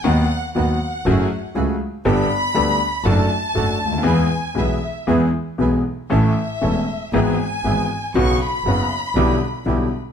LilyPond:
<<
  \new Staff \with { instrumentName = "Violin section" } { \time 4/4 \key e \mixolydian \tempo 4 = 119 fis''4 fis''2 r4 | b''2 a''2 | gis''4 e''4 r2 | e''2 gis''8 gis''4. |
cis'''8 b''2. r8 | }
  \new Staff \with { instrumentName = "Bandoneon" } { \time 4/4 \key e \mixolydian <b dis' fis'>8 r8 <b dis' fis'>8 r8 <a fis' gis'>8 r8 <a fis' gis'>8 r8 | <b g' a'>8 r8 <b g' a'>8 r8 <d' fis' a'>8 r8 <d' fis' a'>8 r8 | <b e' gis'>8 r8 <b e' gis'>8 r8 <b e' gis'>8 r8 <b e' gis'>8 r8 | <cis' e' a'>8 r8 <cis' e' a'>8 r8 <b e' gis'>8 r8 <b e' gis'>8 r8 |
<b cis' fis'>8 r8 <b cis' fis'>8 r8 <d' e' g'>8 r8 <d' e' g'>8 r8 | }
  \new Staff \with { instrumentName = "Grand piano" } { \clef bass \time 4/4 \key e \mixolydian <dis, dis fis b fis'>8 r8 <dis, dis fis b fis'>8 r8 <fis, fis a cis' gis'>8 r8 <cis, cis fis a cis' gis'>8 r8 | <g,, g, g b d' a'>8 r8 <d, d g b d' a'>8 r8 <fis, fis a d' a'>8 r8 <fis, fis a d' a'>8 r32 cis,32 d,32 dis,32 | <e, e gis b gis'>8 r8 <b,, b, e gis b gis'>8 r8 <e, e gis b gis'>8 r8 <b,, b, e gis b gis'>8 r8 | <a,, a, e a cis' a'>8 r8 <e,, e, e a cis' a'>8 r8 <gis,, gis, e gis b gis'>8 r8 <gis,, gis, e gis b gis'>8 r8 |
<b,, b, cis fis b fis'>8 r8 <fis,, fis, cis fis b fis'>8 r8 <b,, b, d g b e'>8 r8 <b,, b, d g b e'>8 r8 | }
  \new Staff \with { instrumentName = "Double bass" } { \clef bass \time 4/4 \key e \mixolydian dis,8 r8 dis,8 r8 fis,,8 r8 cis,8 r8 | g,,8 r8 d,8 r8 fis,,8 r8 fis,,8 d,8 | e,8 r8 b,,8 r8 e,8 r8 b,,8 r8 | a,,8 r8 e,,8 r8 gis,,8 r8 gis,,8 r8 |
b,,8 r8 fis,,8 r8 b,,8 r8 b,,8 r8 | }
>>